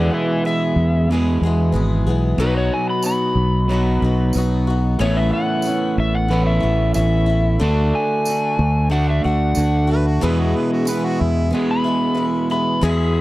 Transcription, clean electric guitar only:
0.00 1.07 E2 medium
0.00 1.07 B2 medium
0.00 1.08 E3 medium
0.00 1.08 G#3 loud
0.00 1.11 B3 loud
0.00 1.09 G#4 medium
1.09 2.38 E2 medium
1.09 2.37 B2 medium
1.09 2.39 E3 medium
1.09 2.39 G#3 medium
1.09 2.41 B3 medium
1.09 2.39 G#4 medium
2.39 3.67 B2 medium
2.39 3.68 F#3 medium
2.39 3.69 B3 medium
2.39 3.69 D#4 medium
2.39 3.69 F#4 medium
3.68 4.97 B2 medium
3.68 4.98 F#3 medium
3.68 4.98 B3 medium
3.68 4.99 D#4 medium
3.68 4.99 F#4 medium
4.99 6.28 A2 medium
4.99 6.28 E3 medium
4.99 6.29 B3 medium
4.99 6.29 C#4 medium
4.99 6.29 E4 medium
6.30 7.58 A2 medium
6.30 7.59 E3 medium
6.30 7.59 B3 medium
6.30 7.59 C#4 medium
6.30 7.60 E4 medium
7.60 8.89 D3 medium
7.60 8.89 A3 medium
7.60 8.90 D4 loud
7.60 8.91 F#4 loud
8.90 10.19 D3 medium
8.90 10.20 A3 medium
8.90 10.20 D4 medium
8.90 10.20 F#4 medium
10.21 11.50 E2 medium
10.21 11.50 B2 medium
10.21 11.51 E3 medium
10.21 11.51 G#3 medium
10.21 11.51 B3 medium
10.21 11.51 G#4 medium
11.53 12.81 E2 medium
11.53 12.82 B2 medium
11.53 12.82 E3 medium
11.53 12.82 G#3 medium
11.53 12.82 B3 medium
11.53 12.82 G#4 medium

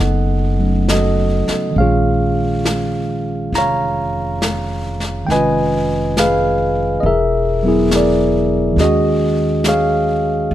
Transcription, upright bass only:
0.00 1.45 F#1 medium
1.49 muted upright bass stroke soft
1.76 3.48 A#1 medium
3.53 5.24 F1 medium
5.28 6.99 F1 medium
7.03 8.73 E1 medium
8.76 10.46 D#2 medium
10.51 10.54 A#1 medium

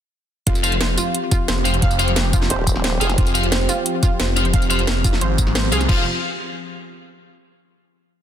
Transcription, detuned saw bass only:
0.47 0.96 F1 medium
1.48 1.81 F1 loud
1.82 2.32 F1 loud
2.33 2.49 F1 loud
3.18 3.67 F1 loud
4.20 4.52 F1 loud
4.54 5.03 F1 loud
5.04 5.20 F1 loud
5.21 5.71 G#1 medium
5.72 5.88 C2 medium
5.89 6.05 F1 loud

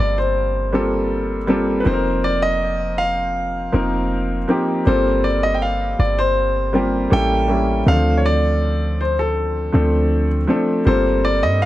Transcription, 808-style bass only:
0.00 1.82 G1 loud
1.86 3.69 F1 loud
3.74 4.46 F1 loud
4.87 5.95 G1 loud
5.99 7.07 G1 loud
7.12 7.83 A1 loud
7.86 9.70 D2 loud
9.74 10.46 D2 loud
10.86 11.44 G1 loud
11.42 11.65 G2 loud

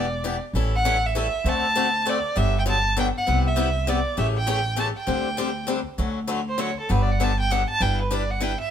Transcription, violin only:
0.00 0.39 D5 medium
0.76 1.08 F#5 loud
1.06 1.17 E5 medium
1.18 1.51 E5 medium
1.49 2.11 A5 loud
2.09 2.39 D5 medium
2.37 2.55 E5 medium
2.59 2.63 G5 medium
2.69 2.96 A5 medium
2.99 3.07 G5 medium
3.18 3.44 F#5 medium
3.47 3.90 E5 medium
3.89 4.18 D5 medium
4.19 4.27 E5 medium
4.37 4.76 G5 loud
4.80 4.88 A5 medium
4.97 5.65 G5 medium
6.49 6.62 C5 medium
6.61 6.78 C#5 medium
6.80 6.93 A4 medium
6.91 7.03 B4 medium
7.02 7.13 D5 medium
7.12 7.25 F#5 medium
7.23 7.39 A5 medium
7.40 7.53 G5 medium
7.52 7.69 F#5 medium
7.70 7.83 A5 loud
7.82 7.99 G5 medium
8.02 8.15 B4 medium
8.13 8.32 D5 medium
8.30 8.44 F#5 medium
8.43 8.60 G5 medium
8.61 8.71 E5 medium

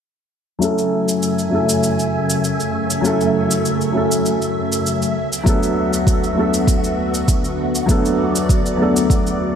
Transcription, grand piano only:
0.59 1.48 F#3 medium
0.59 1.48 A3 medium
0.59 1.49 C#4 medium
0.59 1.50 E4 medium
0.64 1.50 A4 medium
1.50 2.99 F#3 medium
1.50 3.00 A3 medium
1.50 3.00 C#4 medium
1.50 3.01 E4 medium
1.55 3.02 A4 medium
3.01 3.90 F#3 medium
3.01 3.91 A3 medium
3.01 3.91 C#4 medium
3.01 3.92 E4 medium
3.06 3.92 A4 medium
3.92 5.13 F#3 medium
3.92 5.14 A3 medium
3.92 5.14 C#4 medium
3.92 5.15 E4 medium
3.97 5.16 A4 medium
5.44 6.32 F#3 medium
5.44 6.33 A3 medium
5.44 6.34 B3 medium
5.44 6.34 D4 medium
5.49 6.35 A4 medium
6.34 7.84 F#3 medium
6.34 7.85 A3 medium
6.34 7.85 B3 medium
6.34 7.86 D4 medium
6.39 7.87 A4 medium
7.86 8.75 F#3 medium
7.86 8.75 A3 medium
7.86 8.76 B3 medium
7.86 8.77 D4 medium
7.91 8.77 A4 medium
8.77 9.55 F#3 medium
8.77 9.55 A3 medium
8.77 9.55 B3 medium
8.77 9.55 D4 medium
8.82 9.55 A4 medium

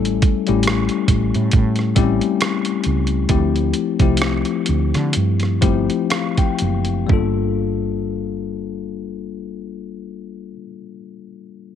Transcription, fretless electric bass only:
0.00 0.19 A1 medium
0.49 0.87 A1 medium
1.09 1.31 A1 medium
1.36 1.52 A2 medium
1.54 1.93 A2 medium
1.97 2.19 A1 medium
2.86 3.26 C#2 medium
3.30 3.71 D2 medium
4.01 4.43 C2 medium
4.69 4.92 D2 medium
4.96 5.13 D3 medium
5.16 5.59 G2 medium
5.63 5.87 G1 medium
6.62 7.07 F#1 medium
7.10 10.54 G1 medium

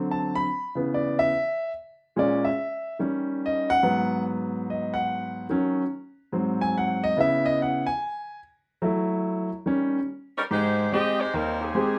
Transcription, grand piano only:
0.00 0.45 D3 medium
0.00 0.45 F#3 soft
0.00 0.45 C4 medium
0.11 0.36 A5 medium
0.35 0.74 B5 medium
0.75 1.29 C#3 soft
0.75 1.30 E3 soft
0.75 1.30 B3 medium
0.94 1.19 D5 medium
1.19 1.71 E5 medium
2.16 2.47 A#2 medium
2.16 2.48 G#3 soft
2.16 2.48 C#4 medium
2.16 2.44 D5 medium
2.45 2.96 E5 medium
2.99 3.79 D#3 soft
2.99 3.79 G3 soft
2.99 3.79 C#4 medium
3.46 3.70 D#5 medium
3.70 4.22 F#5 loud
3.83 5.46 G#2 medium
3.83 5.46 F#3 medium
3.83 5.46 B3 medium
4.70 4.95 D#5 medium
4.94 5.46 F#5 medium
5.50 5.81 D#3 medium
5.50 5.82 F#3 medium
5.50 5.82 C#4 medium
6.33 7.12 G#2 medium
6.33 7.12 F#3 soft
6.33 7.13 C4 medium
6.61 6.75 G#5 medium
6.78 7.03 F#5 medium
7.04 7.17 D#5 medium
7.17 7.82 C#3 medium
7.17 7.82 B3 medium
7.17 7.83 E4 medium
7.17 7.45 E5 medium
7.46 7.59 D#5 medium
7.62 7.87 F#5 medium
7.87 8.38 G#5 medium
8.82 9.48 F#3 medium
8.82 9.48 A3 medium
8.82 9.49 E4 medium
9.66 9.97 D#3 soft
9.66 9.97 G3 soft
9.66 9.98 C#4 medium
10.51 10.86 G#2 medium
10.93 11.20 G#3 soft
10.93 11.20 C4 soft
10.93 11.21 G4 medium
11.34 11.69 D#2 medium
11.75 11.99 G#3 medium
11.75 11.99 C4 medium
11.75 11.99 G4 medium

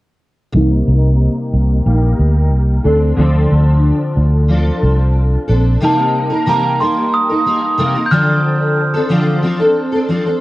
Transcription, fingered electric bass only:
0.55 0.81 C2 medium
0.88 1.27 C2 medium
1.54 1.80 C2 medium
1.86 2.12 A#1 medium
2.19 2.52 D2 medium
2.52 2.79 C2 medium
2.85 3.12 D2 medium
3.18 3.44 D2 medium
3.52 3.91 D2 medium
4.17 4.70 D2 medium
4.83 5.36 C2 medium
5.49 5.75 A#1 medium

